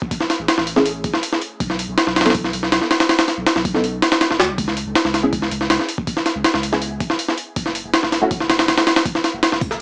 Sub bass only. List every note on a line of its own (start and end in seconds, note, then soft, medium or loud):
0.39 0.47 A1 medium
0.58 1.03 A1 loud
1.60 1.87 B1 loud
1.88 1.96 B1 medium
2.07 2.52 B1 loud
2.53 2.70 B1 loud
2.72 2.80 B1 medium
3.37 3.45 B1 medium
3.56 4.01 B1 loud
4.30 4.41 F#1 loud
4.39 4.50 D#2 medium
4.49 4.57 B1 medium
4.58 4.85 C#2 loud
4.86 4.94 C#2 medium
5.05 5.50 C#2 loud
5.51 5.68 C#2 loud
5.70 5.78 C#2 medium
6.35 6.44 C#2 medium
6.54 6.99 C#2 loud
7.56 7.83 F#1 loud
7.85 7.93 F#1 medium
8.03 8.48 F#1 loud
8.50 8.66 F#1 loud
8.68 8.77 F#1 medium
9.33 9.42 F#1 medium
9.52 9.81 F#1 loud